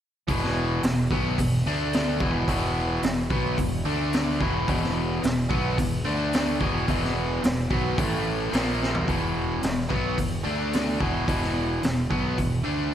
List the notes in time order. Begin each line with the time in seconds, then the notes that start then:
0.28 E1 E2 B2 E3, kick, open hi-hat
0.44 snare
0.83 E1 E2 B2, snare, open hi-hat
1.11 B1 B2 F#3 B3, kick
1.38 E1 E2 B2, kick, open hi-hat
1.66 D2 D3 A3 D4
1.93 snare, open hi-hat
2.20 E1 E2 B2 E3, kick
2.48 E1 E2 B2 E3, kick, open hi-hat
3.03 E1 E2 B2, snare, open hi-hat
3.30 B1 B2 F#3 B3, kick
3.57 E1 E2 B2, kick, open hi-hat
3.85 D2 D3 A3 D4
4.13 snare, open hi-hat
4.40 E1 E2 B2 E3, kick
4.68 E1 E2 B2 E3, kick, open hi-hat
4.84 snare
5.23 E1 E2 B2, snare, open hi-hat
5.49 B1 B2 F#3 B3, kick
5.78 E1 E2 B2, kick, open hi-hat
6.05 D2 D3 A3 D4
6.33 snare, open hi-hat
6.60 E1 E2 B2 E3, kick
6.87 E1 E2 B2 E3, kick, open hi-hat
7.04 snare
7.43 E1 E2 B2, snare, open hi-hat
7.70 B1 B2 F#3 B3, kick
7.97 A1 A2 E3 A3, kick, open hi-hat
8.52 A#1 A#2 F3 A#3, snare, open hi-hat
8.83 snare
8.95 floor tom
9.07 E1 E2 B2 E3, kick, open hi-hat
9.63 E1 E2 B2, snare, open hi-hat
9.89 B1 B2 F#3 B3, kick
10.17 E1 E2 B2, kick, open hi-hat
10.44 D2 D3 A3 D4
10.73 snare, open hi-hat
11.00 E1 E2 B2 E3, kick
11.27 E1 E2 B2 E3, kick, open hi-hat
11.43 snare
11.82 E1 E2 B2, snare, open hi-hat
12.10 B1 B2 F#3 B3, kick
12.38 E1 E2 B2, kick, open hi-hat
12.64 D2 D3 A3 D4